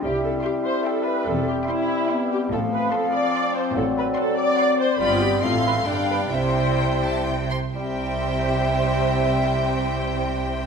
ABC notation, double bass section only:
X:1
M:3/4
L:1/8
Q:1/4=143
K:C
V:1 name="Double bass section" clef=bass
C,,2 z4 | E,,,2 z4 | A,,,2 z4 | A,,,2 z4 |
G,,,2 A,,,2 G,,,2 | C,,4- C,, z | C,,6- | C,,6 |]